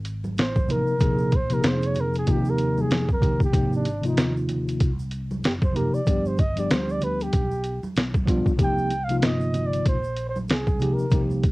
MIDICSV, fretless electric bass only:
0, 0, Header, 1, 3, 480
1, 0, Start_track
1, 0, Key_signature, -3, "minor"
1, 0, Tempo, 631579
1, 768, Time_signature, 4, 2, 24, 8
1, 8754, End_track
2, 0, Start_track
2, 0, Title_t, "Fretless electric bass"
2, 0, Program_c, 0, 35
2, 0, Note_on_c, 0, 32, 91
2, 266, Note_off_c, 0, 32, 0
2, 277, Note_on_c, 0, 33, 93
2, 647, Note_off_c, 0, 33, 0
2, 767, Note_on_c, 0, 34, 100
2, 1224, Note_off_c, 0, 34, 0
2, 1240, Note_on_c, 0, 41, 91
2, 1700, Note_off_c, 0, 41, 0
2, 1727, Note_on_c, 0, 39, 106
2, 2184, Note_off_c, 0, 39, 0
2, 2204, Note_on_c, 0, 41, 88
2, 2434, Note_off_c, 0, 41, 0
2, 2445, Note_on_c, 0, 39, 88
2, 2675, Note_off_c, 0, 39, 0
2, 2685, Note_on_c, 0, 32, 101
2, 3143, Note_off_c, 0, 32, 0
2, 3163, Note_on_c, 0, 39, 83
2, 3622, Note_off_c, 0, 39, 0
2, 3650, Note_on_c, 0, 36, 93
2, 4105, Note_off_c, 0, 36, 0
2, 4124, Note_on_c, 0, 30, 92
2, 4490, Note_off_c, 0, 30, 0
2, 4612, Note_on_c, 0, 31, 98
2, 5067, Note_off_c, 0, 31, 0
2, 5095, Note_on_c, 0, 38, 94
2, 5548, Note_off_c, 0, 38, 0
2, 5572, Note_on_c, 0, 35, 88
2, 5935, Note_off_c, 0, 35, 0
2, 6049, Note_on_c, 0, 35, 98
2, 6413, Note_off_c, 0, 35, 0
2, 6528, Note_on_c, 0, 36, 105
2, 6984, Note_off_c, 0, 36, 0
2, 7009, Note_on_c, 0, 31, 92
2, 7465, Note_off_c, 0, 31, 0
2, 7492, Note_on_c, 0, 34, 86
2, 7946, Note_off_c, 0, 34, 0
2, 7971, Note_on_c, 0, 36, 84
2, 8334, Note_off_c, 0, 36, 0
2, 8446, Note_on_c, 0, 36, 102
2, 8754, Note_off_c, 0, 36, 0
2, 8754, End_track
3, 0, Start_track
3, 0, Title_t, "Muted fretless electric bass strokes"
3, 4514, Note_on_c, 9, 29, 45
3, 4590, Note_off_c, 9, 29, 0
3, 8355, Note_on_c, 9, 29, 48
3, 8431, Note_off_c, 9, 29, 0
3, 8754, End_track
0, 0, End_of_file